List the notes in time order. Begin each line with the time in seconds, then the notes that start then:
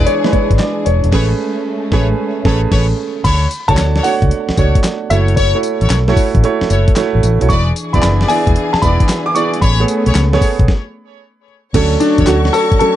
Already playing: E3 G#3 D4 E4 G#4 B4 D5
0.06 C#5, closed hi-hat
0.24 G#3 D4 E4 B4, snare
0.32 G#3 D4 E4 B4 C#5, muted fingered electric bass stroke, kick, closed hi-hat
0.51 G#1, kick, closed hi-hat
0.59 D5, snare, clap, closed hi-hat
0.85 E1 C#5, closed hi-hat
1.04 E1, closed hi-hat
1.12 A1 G#3 A3 C#4 G#4 A4 B4 C#5, kick, snare, crash
1.92 A1 A3 C#4 G#4 A4 B4 C#5, kick, snare
2.45 A1 A3 C#4 G#4 A4 B4 C#5 A5, kick, snare
2.71 A1 G#4 A4 B4 C#5, kick, snare, crash
3.24 D2 D4 F#4 A4 C#5 B5, kick, closed hi-hat, crash, tambourine
3.51 closed hi-hat, tambourine
3.68 C#2 A3 D4 F#4 A4 C#5 A5, kick, closed hi-hat
3.77 D2, snare, clap, closed hi-hat, tambourine
3.95 D4 F#4 A4 C#5, snare
4.03 A3 D4 F#4 C#5 F#5, open hi-hat, tambourine
4.22 C#2, kick, closed hi-hat
4.31 closed hi-hat
4.49 muted fingered electric bass stroke, snare
4.57 C#2 A3 D4 F#4 A4 C#5, kick, closed hi-hat, tambourine
4.75 kick, closed hi-hat
4.84 snare, clap, closed hi-hat, tambourine
5.10 F#1 A3 E4 F#4 A4 C#5 E5, closed hi-hat, tambourine
5.28 closed hi-hat
5.36 E4 F#4 A4 C#5, kick, closed hi-hat, tambourine
5.55 A3 E4 F#4 C#5
5.63 closed hi-hat, tambourine
5.81 A1 E4 F#4 A4 C#5, closed hi-hat
5.90 B1, snare, clap, closed hi-hat, tambourine
6.08 A3 E4 F#4 A4 C#5, snare
6.17 kick, open hi-hat, tambourine
6.35 A1, kick, closed hi-hat
6.44 A3 E4 F#4 C#5, closed hi-hat
6.61 muted fingered electric bass stroke, snare
6.70 F#1 E4 F#4 A4 C#5, closed hi-hat, tambourine
6.88 kick, closed hi-hat
6.96 A3 E4 F#4 C#5, snare, clap, closed hi-hat, tambourine
7.15 A1
7.23 A1, closed hi-hat, tambourine
7.41 B1 A3 E4 F#4 C#5, closed hi-hat
7.49 E1 E3 D4 E4 G#4 B4 D5 C#6, kick, closed hi-hat, tambourine
7.76 closed hi-hat, tambourine
7.93 E1 B3 E4 G#4 B4 D5 B5, kick, closed hi-hat
8.02 F#1 B5, snare, clap, closed hi-hat, tambourine
8.20 E4 G#4 B4 D5, snare
8.28 B3 E4 G#4 D5 G#5, open hi-hat, tambourine
8.47 E1, kick, closed hi-hat
8.56 closed hi-hat
8.73 A5, muted fingered electric bass stroke, snare
8.82 E1 B3 E4 G#4 B4 D5 B5, kick, closed hi-hat, tambourine
9.00 kick, closed hi-hat
9.09 snare, clap, closed hi-hat, tambourine
9.26 D6
9.35 B3 E4 G#4 B4 D5 C#6, closed hi-hat, tambourine
9.54 closed hi-hat
9.61 A1 A3 B3 C#4 G#4 A4 B4 C#5 B5, kick, closed hi-hat, tambourine
9.80 B3 G#4 A4 C#5
9.88 closed hi-hat, tambourine
10.06 B1 G#4 A4 B4 C#5, closed hi-hat
10.15 C#2, snare, clap, closed hi-hat, tambourine
10.33 B3 G#4 A4 B4 C#5, snare
10.41 kick, open hi-hat, tambourine
10.59 B1, kick, closed hi-hat
10.68 kick, snare
11.74 D2 F#3 A3 C#4 D4 F#4 A4 C#5 C#6, kick, closed hi-hat, crash, tambourine
12.00 D4, closed hi-hat, tambourine
12.18 E2 D4 F#4 A4 C#5, kick, closed hi-hat
12.26 D2 F#3 A3 C#4 D4 F#4 A4, snare, clap, closed hi-hat, tambourine
12.45 snare
12.53 A4, open hi-hat, tambourine
12.72 kick, closed hi-hat
12.79 F#3 A3 C#4 D4 A4, muted fingered electric bass stroke, closed hi-hat